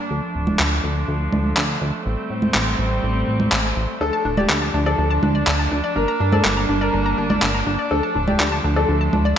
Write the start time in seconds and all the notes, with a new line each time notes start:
Already playing: D4
0.10 D2 F3 A3
0.35 D1
0.47 high conga
0.59 D2, clap
0.84 D2
1.08 D2
1.32 D2, high conga
1.57 D2, clap
1.81 D2
2.06 A1 G3 C4
2.30 A2
2.42 high conga
2.54 A1, clap
2.79 A1
3.03 A1
3.28 A1
3.40 high conga
3.52 A1, clap
3.76 A1
4.01 D2 F3 D4 A4
4.13 A5
4.25 D1 D4
4.37 G4 D5, high conga
4.50 D2 D4, clap
4.62 A5
4.74 D2 D4
4.86 A4 D5
4.98 D2 D4
5.11 A5
5.23 D2 D4, high conga
5.35 D5
5.47 D2 D4, clap
5.59 A5
5.71 D2 D4
5.84 D5
5.96 G1 G3 A#3 D4 A#4
6.08 A#5
6.20 G2 D4
6.32 A4 D5, high conga
6.45 G1 D4, clap
6.57 A#5
6.69 G1 D4
6.81 A#4 D5
6.93 G1 D4
7.06 A#5
7.18 G1 D4
7.30 D5, high conga
7.42 G1 D4, clap
7.55 A#5
7.67 G1 D4
7.79 D5
7.91 D2 F3 A3 D4 A4
8.03 A5
8.15 D1 D4
8.27 G4 D5, high conga
8.40 D2 D4, clap
8.52 A5
8.64 D2 D4
8.76 A4 D5
8.89 D2 D4
9.01 A5
9.13 D2 D4, high conga
9.25 D5